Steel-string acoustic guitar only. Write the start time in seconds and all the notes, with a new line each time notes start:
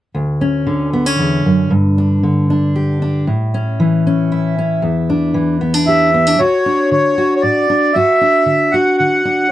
0.15 D2
0.41 C#4
0.67 D3
0.93 B3
1.06 C#4
1.19 E2
1.45 F#2
1.70 G2
1.98 D4
2.23 D3
2.50 D4
2.76 G4
3.02 D4
3.27 A2
3.54 C#4
3.80 E3
4.07 C#4
4.32 E4
4.58 C#4
4.82 E2
5.10 D4
5.34 E3
5.61 B3
5.74 D4
5.88 G4
6.14 B3
6.27 D4
6.39 D2 F#4
6.66 D4
6.91 D3
7.18 F#4
7.43 A2
7.70 D4
7.95 G2 F#4
8.21 D4
8.46 D3
8.74 F#4
9.00 D3
9.25 D4